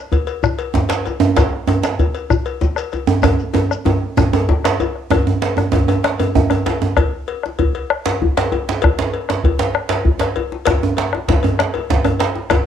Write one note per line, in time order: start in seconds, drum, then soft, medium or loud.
0.12 bombo low loud
0.12 cowbell medium
0.12 djembe tone medium
0.12 shekere soft
0.27 cowbell soft
0.27 shekere soft
0.43 bombo rim medium
0.43 djembe bass medium
0.43 shekere medium
0.59 cowbell medium
0.59 shekere soft
0.74 bombo low medium
0.74 djembe slap medium
0.74 djembe tone medium
0.74 shekere soft
0.89 bombo rim medium
0.89 cowbell soft
0.89 djembe slap medium
0.89 shekere soft
1.06 bombo rim soft
1.06 cowbell soft
1.06 djembe tone medium
1.06 shekere soft
1.20 djembe tone loud
1.20 shekere soft
1.37 bombo rim medium
1.37 bombo low medium
1.37 cowbell medium
1.37 djembe slap medium
1.37 djembe bass medium
1.37 shekere soft
1.53 bombo rim soft
1.68 cowbell soft
1.68 djembe slap medium
1.68 djembe tone medium
1.84 bombo rim medium
1.84 djembe slap medium
1.84 shekere soft
1.99 bombo low loud
1.99 cowbell soft
1.99 djembe tone medium
1.99 shekere soft
2.15 cowbell soft
2.15 shekere soft
2.30 bombo rim medium
2.30 djembe bass medium
2.30 shekere medium
2.46 cowbell soft
2.46 shekere soft
2.61 bombo low medium
2.61 djembe slap medium
2.61 shekere soft
2.76 bombo rim medium
2.76 cowbell soft
2.76 shekere soft
2.92 bombo rim soft
2.92 cowbell soft
2.92 djembe tone medium
2.92 shekere soft
3.08 djembe tone loud
3.08 shekere soft
3.23 bombo rim medium
3.23 bombo low loud
3.23 cowbell medium
3.23 djembe slap soft
3.23 djembe tone medium
3.23 djembe bass medium
3.23 shekere medium
3.39 djembe slap soft
3.39 shekere soft
3.54 cowbell soft
3.54 djembe slap medium
3.54 djembe tone medium
3.71 bombo rim medium
3.71 shekere soft
3.85 cowbell soft
3.85 djembe slap soft
3.85 djembe tone medium
4.17 bombo rim medium
4.17 djembe slap soft
4.17 djembe tone medium
4.17 djembe bass medium
4.17 shekere medium
4.33 cowbell soft
4.33 djembe tone loud
4.33 shekere soft
4.49 bombo low medium
4.49 djembe slap medium
4.64 bombo rim medium
4.64 cowbell soft
4.64 djembe slap soft
4.64 djembe slap loud
4.64 shekere soft
4.80 cowbell soft
4.80 djembe tone medium
4.80 shekere soft
4.95 bombo rim soft
5.10 bombo rim loud
5.10 bombo low loud
5.10 cowbell medium
5.10 djembe tone medium
5.10 djembe bass medium
5.27 djembe tone medium
5.42 cowbell soft
5.42 djembe slap medium
5.57 bombo rim medium
5.57 djembe slap medium
5.57 djembe tone medium
5.72 bombo low loud
5.72 cowbell medium
5.72 djembe tone loud
5.72 djembe tone medium
5.72 djembe bass medium
5.88 cowbell soft
5.88 djembe tone medium
6.04 bombo rim medium
6.04 djembe slap medium
6.20 cowbell medium
6.20 djembe slap soft
6.20 djembe tone medium
6.35 bombo low medium
6.35 djembe tone medium
6.35 djembe bass medium
6.50 bombo rim medium
6.50 cowbell soft
6.50 djembe tone medium
6.66 cowbell medium
6.66 djembe slap medium
6.66 djembe tone medium
6.82 djembe slap soft
6.82 djembe tone medium
6.97 bombo rim medium
6.97 bombo low loud
6.97 cowbell medium
6.97 djembe bass medium
7.28 cowbell soft
7.43 bombo rim medium
7.43 djembe slap medium
7.59 bombo low loud
7.59 cowbell medium
7.59 djembe tone medium
7.59 djembe bass medium
7.75 cowbell soft
7.90 bombo rim medium
8.06 cowbell medium
8.06 djembe slap medium
8.21 bombo low medium
8.21 djembe bass medium
8.37 bombo rim medium
8.37 cowbell medium
8.37 djembe slap medium
8.52 cowbell soft
8.52 djembe tone medium
8.69 djembe slap medium
8.82 bombo rim loud
8.82 bombo low loud
8.82 cowbell medium
8.82 djembe bass medium
8.98 djembe slap medium
9.13 cowbell soft
9.29 bombo rim medium
9.29 djembe slap medium
9.43 bombo low loud
9.43 cowbell soft
9.43 djembe tone medium
9.43 djembe bass medium
9.59 cowbell soft
9.59 djembe slap medium
9.75 bombo rim loud
9.89 cowbell soft
9.89 djembe slap medium
10.05 bombo low medium
10.05 djembe bass medium
10.19 bombo rim medium
10.19 cowbell soft
10.19 djembe slap medium
10.36 cowbell soft
10.36 djembe tone medium
10.52 djembe slap medium
10.65 bombo rim medium
10.65 bombo low medium
10.65 cowbell medium
10.65 djembe slap medium
10.65 djembe bass medium
10.83 djembe tone medium
10.97 cowbell soft
10.97 djembe slap medium
10.97 djembe slap soft
11.13 bombo rim medium
11.13 djembe slap medium
11.28 bombo rim soft
11.28 bombo low loud
11.28 cowbell medium
11.28 djembe slap medium
11.28 djembe slap soft
11.28 djembe tone medium
11.28 djembe bass medium
11.43 cowbell soft
11.43 djembe tone medium
11.59 bombo rim medium
11.59 djembe slap medium
11.74 cowbell medium
11.74 djembe slap medium
11.90 bombo rim soft
11.90 bombo low medium
11.90 djembe slap medium
11.90 djembe slap soft
11.90 djembe bass medium
12.05 bombo rim medium
12.05 cowbell soft
12.05 djembe tone medium
12.05 djembe bass soft
12.20 bombo rim soft
12.20 cowbell soft
12.20 djembe slap soft
12.20 djembe slap medium
12.35 djembe slap medium
12.50 bombo rim loud
12.50 bombo low medium
12.50 cowbell medium
12.50 djembe slap medium
12.50 djembe bass medium